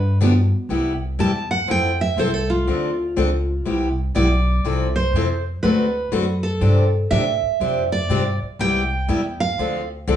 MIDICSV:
0, 0, Header, 1, 6, 480
1, 0, Start_track
1, 0, Key_signature, 0, "major"
1, 0, Tempo, 493421
1, 684, Time_signature, 4, 2, 24, 8
1, 9888, End_track
2, 0, Start_track
2, 0, Title_t, "Steel-string acoustic guitar"
2, 0, Program_c, 0, 25
2, 0, Note_on_c, 0, 71, 76
2, 171, Note_off_c, 0, 71, 0
2, 1168, Note_on_c, 0, 81, 85
2, 1461, Note_off_c, 0, 81, 0
2, 1467, Note_on_c, 0, 78, 90
2, 1638, Note_off_c, 0, 78, 0
2, 1663, Note_on_c, 0, 79, 94
2, 1949, Note_off_c, 0, 79, 0
2, 1956, Note_on_c, 0, 76, 88
2, 2123, Note_off_c, 0, 76, 0
2, 2134, Note_on_c, 0, 72, 74
2, 2274, Note_off_c, 0, 72, 0
2, 2274, Note_on_c, 0, 69, 76
2, 2430, Note_on_c, 0, 65, 66
2, 2434, Note_off_c, 0, 69, 0
2, 3620, Note_off_c, 0, 65, 0
2, 4044, Note_on_c, 0, 74, 70
2, 4789, Note_off_c, 0, 74, 0
2, 4822, Note_on_c, 0, 72, 72
2, 5272, Note_off_c, 0, 72, 0
2, 5474, Note_on_c, 0, 71, 75
2, 6225, Note_off_c, 0, 71, 0
2, 6256, Note_on_c, 0, 69, 76
2, 6709, Note_off_c, 0, 69, 0
2, 6913, Note_on_c, 0, 76, 99
2, 7665, Note_off_c, 0, 76, 0
2, 7708, Note_on_c, 0, 74, 90
2, 8156, Note_off_c, 0, 74, 0
2, 8372, Note_on_c, 0, 79, 105
2, 9115, Note_off_c, 0, 79, 0
2, 9148, Note_on_c, 0, 77, 91
2, 9596, Note_off_c, 0, 77, 0
2, 9888, End_track
3, 0, Start_track
3, 0, Title_t, "Steel pan"
3, 0, Program_c, 1, 114
3, 0, Note_on_c, 1, 62, 88
3, 215, Note_off_c, 1, 62, 0
3, 231, Note_on_c, 1, 59, 65
3, 665, Note_off_c, 1, 59, 0
3, 9888, End_track
4, 0, Start_track
4, 0, Title_t, "Steel-string acoustic guitar"
4, 0, Program_c, 2, 25
4, 200, Note_on_c, 2, 50, 81
4, 208, Note_on_c, 2, 53, 84
4, 209, Note_on_c, 2, 62, 95
4, 210, Note_on_c, 2, 59, 93
4, 217, Note_on_c, 2, 67, 99
4, 314, Note_off_c, 2, 50, 0
4, 317, Note_off_c, 2, 53, 0
4, 318, Note_off_c, 2, 59, 0
4, 318, Note_off_c, 2, 62, 0
4, 322, Note_off_c, 2, 67, 0
4, 680, Note_on_c, 2, 48, 56
4, 683, Note_on_c, 2, 55, 63
4, 684, Note_on_c, 2, 59, 63
4, 691, Note_on_c, 2, 64, 68
4, 694, Note_on_c, 2, 67, 64
4, 892, Note_off_c, 2, 48, 0
4, 894, Note_off_c, 2, 55, 0
4, 894, Note_off_c, 2, 59, 0
4, 898, Note_off_c, 2, 64, 0
4, 899, Note_off_c, 2, 67, 0
4, 1156, Note_on_c, 2, 55, 70
4, 1157, Note_on_c, 2, 48, 78
4, 1164, Note_on_c, 2, 59, 80
4, 1166, Note_on_c, 2, 64, 78
4, 1171, Note_on_c, 2, 67, 82
4, 1271, Note_off_c, 2, 55, 0
4, 1272, Note_off_c, 2, 48, 0
4, 1275, Note_off_c, 2, 59, 0
4, 1276, Note_off_c, 2, 64, 0
4, 1279, Note_off_c, 2, 67, 0
4, 1630, Note_on_c, 2, 53, 60
4, 1636, Note_on_c, 2, 60, 59
4, 1648, Note_on_c, 2, 69, 65
4, 1649, Note_on_c, 2, 64, 66
4, 1847, Note_off_c, 2, 53, 0
4, 1850, Note_off_c, 2, 60, 0
4, 1856, Note_off_c, 2, 64, 0
4, 1856, Note_off_c, 2, 69, 0
4, 2118, Note_on_c, 2, 60, 77
4, 2120, Note_on_c, 2, 53, 77
4, 2129, Note_on_c, 2, 64, 86
4, 2134, Note_on_c, 2, 69, 84
4, 2232, Note_off_c, 2, 60, 0
4, 2233, Note_off_c, 2, 53, 0
4, 2238, Note_off_c, 2, 64, 0
4, 2240, Note_off_c, 2, 69, 0
4, 2601, Note_on_c, 2, 50, 66
4, 2602, Note_on_c, 2, 53, 58
4, 2611, Note_on_c, 2, 62, 63
4, 2614, Note_on_c, 2, 60, 66
4, 2617, Note_on_c, 2, 69, 70
4, 2813, Note_off_c, 2, 50, 0
4, 2813, Note_off_c, 2, 53, 0
4, 2818, Note_off_c, 2, 62, 0
4, 2819, Note_off_c, 2, 60, 0
4, 2821, Note_off_c, 2, 69, 0
4, 3078, Note_on_c, 2, 50, 77
4, 3081, Note_on_c, 2, 53, 80
4, 3081, Note_on_c, 2, 60, 87
4, 3090, Note_on_c, 2, 69, 88
4, 3094, Note_on_c, 2, 62, 95
4, 3192, Note_off_c, 2, 50, 0
4, 3194, Note_off_c, 2, 53, 0
4, 3194, Note_off_c, 2, 60, 0
4, 3199, Note_off_c, 2, 69, 0
4, 3200, Note_off_c, 2, 62, 0
4, 3554, Note_on_c, 2, 48, 62
4, 3556, Note_on_c, 2, 55, 60
4, 3562, Note_on_c, 2, 67, 68
4, 3566, Note_on_c, 2, 59, 68
4, 3566, Note_on_c, 2, 64, 65
4, 3770, Note_off_c, 2, 48, 0
4, 3770, Note_off_c, 2, 55, 0
4, 3773, Note_off_c, 2, 67, 0
4, 3775, Note_off_c, 2, 59, 0
4, 3775, Note_off_c, 2, 64, 0
4, 4034, Note_on_c, 2, 48, 73
4, 4039, Note_on_c, 2, 55, 81
4, 4044, Note_on_c, 2, 59, 84
4, 4047, Note_on_c, 2, 67, 90
4, 4049, Note_on_c, 2, 64, 88
4, 4151, Note_off_c, 2, 48, 0
4, 4153, Note_off_c, 2, 55, 0
4, 4156, Note_off_c, 2, 59, 0
4, 4157, Note_off_c, 2, 67, 0
4, 4158, Note_off_c, 2, 64, 0
4, 4520, Note_on_c, 2, 48, 64
4, 4525, Note_on_c, 2, 53, 67
4, 4530, Note_on_c, 2, 60, 64
4, 4532, Note_on_c, 2, 64, 70
4, 4536, Note_on_c, 2, 69, 65
4, 4732, Note_off_c, 2, 48, 0
4, 4735, Note_off_c, 2, 53, 0
4, 4738, Note_off_c, 2, 60, 0
4, 4739, Note_off_c, 2, 64, 0
4, 4741, Note_off_c, 2, 69, 0
4, 5014, Note_on_c, 2, 48, 78
4, 5018, Note_on_c, 2, 53, 89
4, 5022, Note_on_c, 2, 60, 79
4, 5024, Note_on_c, 2, 64, 90
4, 5026, Note_on_c, 2, 69, 87
4, 5121, Note_off_c, 2, 48, 0
4, 5123, Note_off_c, 2, 53, 0
4, 5125, Note_off_c, 2, 60, 0
4, 5126, Note_off_c, 2, 64, 0
4, 5127, Note_off_c, 2, 69, 0
4, 5478, Note_on_c, 2, 50, 60
4, 5481, Note_on_c, 2, 57, 67
4, 5484, Note_on_c, 2, 66, 69
4, 5489, Note_on_c, 2, 60, 64
4, 5493, Note_on_c, 2, 69, 67
4, 5692, Note_off_c, 2, 50, 0
4, 5693, Note_off_c, 2, 57, 0
4, 5695, Note_off_c, 2, 66, 0
4, 5697, Note_off_c, 2, 60, 0
4, 5699, Note_off_c, 2, 69, 0
4, 5951, Note_on_c, 2, 50, 85
4, 5953, Note_on_c, 2, 57, 81
4, 5958, Note_on_c, 2, 69, 98
4, 5959, Note_on_c, 2, 60, 87
4, 5962, Note_on_c, 2, 66, 82
4, 6069, Note_off_c, 2, 50, 0
4, 6071, Note_off_c, 2, 57, 0
4, 6073, Note_off_c, 2, 69, 0
4, 6074, Note_off_c, 2, 60, 0
4, 6075, Note_off_c, 2, 66, 0
4, 6431, Note_on_c, 2, 48, 64
4, 6432, Note_on_c, 2, 53, 58
4, 6436, Note_on_c, 2, 62, 66
4, 6437, Note_on_c, 2, 60, 69
4, 6443, Note_on_c, 2, 67, 72
4, 6649, Note_off_c, 2, 48, 0
4, 6649, Note_off_c, 2, 53, 0
4, 6651, Note_off_c, 2, 62, 0
4, 6652, Note_off_c, 2, 60, 0
4, 6655, Note_off_c, 2, 67, 0
4, 6917, Note_on_c, 2, 48, 76
4, 6919, Note_on_c, 2, 62, 91
4, 6920, Note_on_c, 2, 53, 74
4, 6923, Note_on_c, 2, 60, 85
4, 6926, Note_on_c, 2, 67, 89
4, 7033, Note_off_c, 2, 48, 0
4, 7034, Note_off_c, 2, 62, 0
4, 7035, Note_off_c, 2, 53, 0
4, 7036, Note_off_c, 2, 60, 0
4, 7037, Note_off_c, 2, 67, 0
4, 7400, Note_on_c, 2, 48, 54
4, 7405, Note_on_c, 2, 60, 69
4, 7407, Note_on_c, 2, 53, 58
4, 7407, Note_on_c, 2, 62, 70
4, 7412, Note_on_c, 2, 67, 61
4, 7613, Note_off_c, 2, 48, 0
4, 7616, Note_off_c, 2, 60, 0
4, 7617, Note_off_c, 2, 53, 0
4, 7617, Note_off_c, 2, 62, 0
4, 7619, Note_off_c, 2, 67, 0
4, 7877, Note_on_c, 2, 48, 86
4, 7879, Note_on_c, 2, 53, 78
4, 7886, Note_on_c, 2, 60, 90
4, 7888, Note_on_c, 2, 67, 97
4, 7889, Note_on_c, 2, 62, 91
4, 7993, Note_off_c, 2, 48, 0
4, 7994, Note_off_c, 2, 53, 0
4, 7998, Note_off_c, 2, 60, 0
4, 7998, Note_off_c, 2, 67, 0
4, 7999, Note_off_c, 2, 62, 0
4, 8360, Note_on_c, 2, 48, 63
4, 8365, Note_on_c, 2, 55, 62
4, 8371, Note_on_c, 2, 64, 68
4, 8372, Note_on_c, 2, 59, 64
4, 8373, Note_on_c, 2, 67, 74
4, 8574, Note_off_c, 2, 48, 0
4, 8576, Note_off_c, 2, 55, 0
4, 8579, Note_off_c, 2, 64, 0
4, 8580, Note_off_c, 2, 59, 0
4, 8580, Note_off_c, 2, 67, 0
4, 8837, Note_on_c, 2, 48, 83
4, 8840, Note_on_c, 2, 55, 78
4, 8844, Note_on_c, 2, 59, 88
4, 8845, Note_on_c, 2, 64, 86
4, 8850, Note_on_c, 2, 67, 90
4, 8953, Note_off_c, 2, 48, 0
4, 8955, Note_off_c, 2, 55, 0
4, 8957, Note_off_c, 2, 59, 0
4, 8957, Note_off_c, 2, 64, 0
4, 8960, Note_off_c, 2, 67, 0
4, 9330, Note_on_c, 2, 50, 59
4, 9330, Note_on_c, 2, 53, 64
4, 9339, Note_on_c, 2, 60, 65
4, 9341, Note_on_c, 2, 69, 64
4, 9344, Note_on_c, 2, 62, 61
4, 9539, Note_off_c, 2, 50, 0
4, 9539, Note_off_c, 2, 53, 0
4, 9543, Note_off_c, 2, 60, 0
4, 9544, Note_off_c, 2, 69, 0
4, 9546, Note_off_c, 2, 62, 0
4, 9800, Note_on_c, 2, 53, 87
4, 9801, Note_on_c, 2, 50, 89
4, 9807, Note_on_c, 2, 60, 87
4, 9812, Note_on_c, 2, 62, 100
4, 9812, Note_on_c, 2, 69, 91
4, 9888, Note_off_c, 2, 50, 0
4, 9888, Note_off_c, 2, 53, 0
4, 9888, Note_off_c, 2, 60, 0
4, 9888, Note_off_c, 2, 62, 0
4, 9888, Note_off_c, 2, 69, 0
4, 9888, End_track
5, 0, Start_track
5, 0, Title_t, "Upright bass"
5, 0, Program_c, 3, 32
5, 0, Note_on_c, 3, 43, 85
5, 487, Note_off_c, 3, 43, 0
5, 670, Note_on_c, 3, 36, 80
5, 1143, Note_off_c, 3, 36, 0
5, 1155, Note_on_c, 3, 40, 84
5, 1625, Note_off_c, 3, 40, 0
5, 1640, Note_on_c, 3, 41, 76
5, 2102, Note_off_c, 3, 41, 0
5, 2108, Note_on_c, 3, 36, 82
5, 2582, Note_off_c, 3, 36, 0
5, 2596, Note_on_c, 3, 38, 75
5, 3066, Note_off_c, 3, 38, 0
5, 3081, Note_on_c, 3, 37, 78
5, 3548, Note_off_c, 3, 37, 0
5, 3561, Note_on_c, 3, 36, 81
5, 4029, Note_off_c, 3, 36, 0
5, 4041, Note_on_c, 3, 35, 85
5, 4509, Note_off_c, 3, 35, 0
5, 4514, Note_on_c, 3, 36, 74
5, 4983, Note_off_c, 3, 36, 0
5, 4989, Note_on_c, 3, 41, 84
5, 5463, Note_off_c, 3, 41, 0
5, 5474, Note_on_c, 3, 38, 77
5, 5945, Note_off_c, 3, 38, 0
5, 5951, Note_on_c, 3, 42, 81
5, 6422, Note_off_c, 3, 42, 0
5, 6428, Note_on_c, 3, 43, 84
5, 6902, Note_off_c, 3, 43, 0
5, 6918, Note_on_c, 3, 45, 78
5, 7204, Note_off_c, 3, 45, 0
5, 7394, Note_on_c, 3, 41, 80
5, 7863, Note_off_c, 3, 41, 0
5, 7869, Note_on_c, 3, 43, 84
5, 8160, Note_off_c, 3, 43, 0
5, 8359, Note_on_c, 3, 36, 79
5, 8829, Note_off_c, 3, 36, 0
5, 8835, Note_on_c, 3, 40, 81
5, 9307, Note_off_c, 3, 40, 0
5, 9319, Note_on_c, 3, 38, 77
5, 9789, Note_off_c, 3, 38, 0
5, 9800, Note_on_c, 3, 36, 86
5, 9888, Note_off_c, 3, 36, 0
5, 9888, End_track
6, 0, Start_track
6, 0, Title_t, "Muted upright bass strokes"
6, 7221, Note_on_c, 9, 29, 39
6, 7318, Note_off_c, 9, 29, 0
6, 8189, Note_on_c, 9, 29, 40
6, 8286, Note_off_c, 9, 29, 0
6, 9888, End_track
0, 0, End_of_file